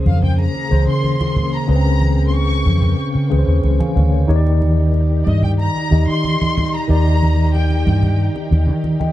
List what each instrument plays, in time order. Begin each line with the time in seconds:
Already playing: tine electric piano C#3 C#4 G#4 C5, string machine C#3 A#3 G#4
0.06 fingered electric bass F2, violin section F5, high conga, low conga
0.22 violin section G5, low conga
0.39 violin section A#5, muted conga
0.55 muted conga
0.69 fingered electric bass C#2, tine electric piano C#3 C#4 G#4 C5, high conga
0.88 fingered electric bass C#3, violin section C6
1.04 high conga
1.21 muted conga, high conga
1.36 high conga, low conga
1.54 violin section A#5
1.67 fingered electric bass C#2, tine electric piano C#3 C#4 G#4 B4, string machine G5, violin section A#5
1.76 tine electric piano C4
1.87 muted conga
2.01 high conga
2.28 violin section C6
2.34 violin section C#6, muted conga
2.50 muted conga
2.66 fingered electric bass F2, high conga, low conga
2.82 low conga
3.15 fingered electric bass C#3
3.29 fingered electric bass C#2, tine electric piano C#3 C#4 G#4 B4, high conga
3.38 tine electric piano C5
3.47 fingered electric bass D#2
3.64 fingered electric bass C#2, muted conga, high conga
3.80 tine electric piano F5 G#5, muted conga, high conga
3.95 fingered electric bass D2, tine electric piano C#5 F5, high conga, low conga
4.12 tine electric piano A#4 C#5
4.27 fingered electric bass D#2, tine electric piano D#3 D#4 G4 C#5, string machine D#3 D#4 G4, muted conga
4.36 tine electric piano D5
4.47 muted conga
4.62 high conga
4.94 muted conga
5.23 fingered electric bass G2, violin section D5 D#5, high conga, low conga
5.43 violin section G5, low conga
5.59 violin section A#5, muted conga
5.76 muted conga
5.90 fingered electric bass D#2, tine electric piano D#3 D#4 G4 D#5, high conga
6.07 fingered electric bass D#3, violin section C6
6.24 high conga
6.42 muted conga, high conga
6.58 high conga, low conga
6.74 violin section A#5
6.88 fingered electric bass D#2, tine electric piano D#3 D#4 G4 D5, violin section A#5, muted conga
7.07 muted conga
7.23 high conga
7.55 violin section G5, muted conga
7.70 muted conga
7.87 fingered electric bass G2, high conga, low conga
8.03 low conga
8.36 muted conga
8.51 fingered electric bass D#2, high conga
8.67 fingered electric bass D#3
8.84 muted conga, high conga
9.00 tine electric piano D#5 G5, high conga